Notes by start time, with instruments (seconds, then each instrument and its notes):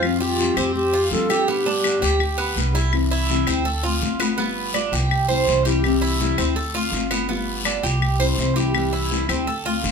Already playing: upright bass F2, cuban tres F4
0.02 nylon-string guitar F3 G3 C4 F4, long guiro, claves
0.20 nylon-string guitar G3 C4 F4, bansuri F#4, cuban tres G4
0.25 bansuri F4
0.38 nylon-string guitar F3 G3 C4 F4, short guiro
0.56 upright bass F2, nylon-string guitar G3 C4 F4, cuban tres C4, bansuri G4, short guiro, claves
0.75 bansuri G4, muted nylon-string guitar stroke, long guiro
0.94 cuban tres F4
1.11 upright bass G2, nylon-string guitar F3 G3 C4 F4, bansuri A4, short guiro
1.29 nylon-string guitar G3 C4 F4, cuban tres G4, short guiro, claves
1.47 nylon-string guitar D3 G3 B3 G4, cuban tres B3, bansuri G4, long guiro
1.66 nylon-string guitar G3 B3 G4, cuban tres D4
1.84 nylon-string guitar D3 G3 B3 G4, short guiro, claves
2.01 upright bass D2, nylon-string guitar G3 B3 G4, cuban tres G4, short guiro
2.20 muted nylon-string guitar stroke, long guiro, claves
2.38 cuban tres B3
2.56 upright bass C2, nylon-string guitar D3 G3 B3 G4, short guiro
2.74 nylon-string guitar G3 B3 G4, cuban tres E4, short guiro
2.92 nylon-string guitar C3 E3 G3 C4 E4, long guiro, claves
3.11 cuban tres E4
3.29 nylon-string guitar C3 E3 G3 C4 E4, short guiro
3.47 upright bass D2, nylon-string guitar G3 C4 E4, cuban tres C4, short guiro, claves
3.65 cuban tres A4, muted nylon-string guitar stroke, long guiro
3.83 nylon-string guitar A3 C4 F4, cuban tres F4
4.02 upright bass G1, nylon-string guitar D3 A3 C4 F4, short guiro
4.19 nylon-string guitar A3 C4 F4, cuban tres B3, short guiro, claves
4.38 nylon-string guitar G3 B3 F4, cuban tres B3, long guiro
4.74 nylon-string guitar G3 B3 F4, cuban tres D4, short guiro, claves
4.92 upright bass C2, nylon-string guitar B3 F4, cuban tres G4, short guiro
5.11 muted nylon-string guitar stroke, long guiro, claves
5.28 nylon-string guitar G3 C4 E4, cuban tres C5
5.47 upright bass C2, nylon-string guitar E3 G3 C4 E4, short guiro
5.65 nylon-string guitar E3 G3 C4 E4, cuban tres G4, short guiro
5.84 nylon-string guitar C3 E3 G3 C4 E4, long guiro, claves
6.02 cuban tres E4
6.19 nylon-string guitar C3 E3 G3 C4 E4, short guiro
6.38 upright bass D2, nylon-string guitar G3 C4 E4, cuban tres C4, short guiro, claves
6.56 cuban tres A4, muted nylon-string guitar stroke, long guiro
6.74 nylon-string guitar A3 C4 F4, cuban tres F4
6.92 upright bass G1, nylon-string guitar D3 A3 C4 F4, short guiro
7.10 nylon-string guitar A3 C4 F4, cuban tres B3, short guiro, claves
7.29 nylon-string guitar G3 B3 F4, cuban tres B3, long guiro
7.65 nylon-string guitar G3 B3 F4, cuban tres D4, short guiro, claves
7.83 upright bass C2, nylon-string guitar B3 F4, cuban tres G4, short guiro
8.01 muted nylon-string guitar stroke, long guiro, claves
8.19 nylon-string guitar G3 C4 E4, cuban tres C5
8.38 upright bass C2, nylon-string guitar E3 G3 C4 E4, short guiro
8.56 nylon-string guitar E3 G3 C4 E4, cuban tres G4, short guiro
8.74 nylon-string guitar C3 E3 G3 C4 E4, long guiro, claves
8.93 cuban tres E4
9.11 nylon-string guitar C3 E3 G3 C4 E4, short guiro
9.28 upright bass D2, nylon-string guitar G3 C4 E4, cuban tres C4, short guiro, claves
9.47 cuban tres A4, muted nylon-string guitar stroke, long guiro
9.66 nylon-string guitar A3 C4 F4, cuban tres F4
9.83 upright bass G1, nylon-string guitar D3 A3 C4 F4, short guiro